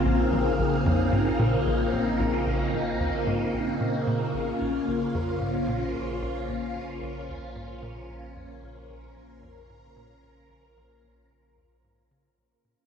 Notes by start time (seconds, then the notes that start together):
Already playing: A#1 C#3 A#3 C4 F4 F5
0.06 A#1 D#4
0.32 A#1
0.59 A#1
0.86 F2
1.13 G#2
1.39 A#2
1.66 A#1
1.93 A#1
2.20 A#1
2.47 A#1
2.73 A#1
3.00 D#2
3.27 G#2
3.54 A#1
3.80 A#2
4.07 A#2
4.34 A#1 C#4 F4 C5
4.61 A#1
4.88 A#1
5.15 F2
5.41 G#2
5.68 A#2
5.95 A#1
6.22 A#1
6.49 A#1
6.75 A#1
7.02 A#1
7.29 D#2
7.56 G#2
7.82 A#2
8.09 A#1
8.36 F2
8.63 A#1 A#4
8.90 A#1
9.16 A#1
9.43 F2
9.70 G#2
9.97 A#2
10.23 A#1
10.50 A#1
10.77 A#1
11.04 A#1
11.31 A#1
11.57 D#2
11.84 G#2
12.11 C#3
12.38 A#1
12.65 A#2